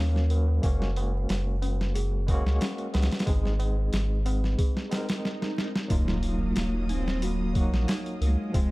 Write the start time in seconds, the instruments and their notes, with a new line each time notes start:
Already playing: sub bass D#2, tine electric piano F#3 A#3 C#4 F4 F5, celesta C#4 F#4
0.16 snare, tabla na
0.30 celesta A#4, open hi-hat, tabla na
0.48 tabla na
0.62 sub bass F#1, tine electric piano G#3 A#3 C#4 F#4, kick, open hi-hat, tabla na
0.81 snare, tabla na
0.96 open hi-hat, tabla na
1.15 tabla na
1.29 sub bass F#1, snare, open hi-hat, tabla na
1.48 tabla na
1.62 celesta C#4, open hi-hat, tabla na
1.80 snare, tabla na
1.95 celesta G#4, open hi-hat, tabla na
2.12 tabla na
2.27 tine electric piano G#3 A#3 C#4 F#4, kick, open hi-hat, tabla na
2.45 sub bass C#2, snare, tabla na
2.60 celesta C#4, snare, open hi-hat, tabla na
2.78 closed hi-hat, tabla na
2.93 sub bass C#2, celesta A#4, snare, open hi-hat, tabla na
3.02 snare, open hi-hat
3.11 snare, open hi-hat, tabla na
3.19 snare, open hi-hat
3.26 sub bass G#1, tine electric piano G#3 C4 D#4 G#4, kick, open hi-hat, tabla na
3.44 snare, tabla na
3.59 open hi-hat, tabla na
3.77 tabla na
3.92 sub bass G#1, snare, open hi-hat, tabla na
4.10 tabla na
4.25 celesta C4, open hi-hat, tabla na
4.43 snare, tabla na
4.58 celesta G#4, kick, open hi-hat, tabla na, swell
4.76 snare, tabla na
4.89 tine electric piano G#3 C4 D#4 A#4, snare, open hi-hat, tabla na
5.09 snare, open hi-hat, tabla na
5.25 snare
5.42 snare
5.58 snare
5.76 snare
5.88 sub bass D#1, tine electric piano F#3 A#3 D#4 F4, kick, open hi-hat, impact
5.92 string machine F#3 F5 D#6, cello A#3
6.08 snare
6.23 open hi-hat
6.56 sub bass D#1, snare, open hi-hat
6.89 cello C4, celesta D#4, open hi-hat
7.08 snare
7.22 cello A#3, celesta F#4, open hi-hat
7.53 tine electric piano F#3 A#3 D#4 F#4, kick, open hi-hat
7.72 sub bass A#1, snare
7.88 celesta D#4, snare, open hi-hat
8.06 closed hi-hat
8.21 sub bass C#2, cello G#3, celesta A#4, open hi-hat
8.52 sub bass D#1, tine electric piano F3 G#3 C4 F4, string machine G#4 C6, kick, open hi-hat